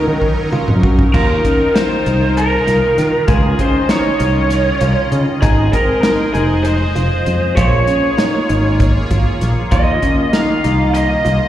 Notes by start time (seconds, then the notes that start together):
Already playing: F#3 C#4 D#4 A#4
0.08 D#3
0.22 kick
0.52 F4, mid tom
0.68 F#2, mid tom
0.83 F#4, kick
0.99 kick
1.14 D#2 D#3 D#4 F4 A#4, kick, crash
1.45 C#4, kick, closed hi-hat
1.74 D#4 C5, snare, closed hi-hat
2.06 C2 D#4, closed hi-hat
2.37 A#4, closed hi-hat
2.67 C2 F4, snare, closed hi-hat
2.98 D#3, snare, closed hi-hat
3.28 C#2 D#3 C#4 F4 G#4 D#5, kick, closed hi-hat
3.59 C#4 C5, kick, closed hi-hat
3.89 D#4 C#5, snare, closed hi-hat
4.20 C2 D#4, closed hi-hat
4.50 snare, closed hi-hat
4.81 C2 F4, closed hi-hat
5.12 C#3, closed hi-hat
5.42 G#1 G#3 D#4 G#4 C5 D#5, kick, closed hi-hat
5.73 C4 A#4, kick, closed hi-hat
6.02 D#4 A#4, snare, closed hi-hat
6.33 F1 D#4 G#4, closed hi-hat
6.63 C5, closed hi-hat
6.96 F1 F4, closed hi-hat
7.26 F2, closed hi-hat
7.56 A#1 A#3 F4 G#4 C#5, kick, closed hi-hat
7.87 C#4, closed hi-hat
8.18 D#4, snare, closed hi-hat
8.49 G#1 D#4, closed hi-hat
8.80 kick, closed hi-hat
9.11 G#1 F4, kick, closed hi-hat
9.41 A#1, snare, closed hi-hat
9.71 D#2 D#3 A#3 F4 D#5, kick, closed hi-hat
10.02 C#4, kick, closed hi-hat
10.33 D#4 F5, snare, closed hi-hat
10.64 C2 D#4, closed hi-hat
10.94 D#5, closed hi-hat
11.25 C2 F4, closed hi-hat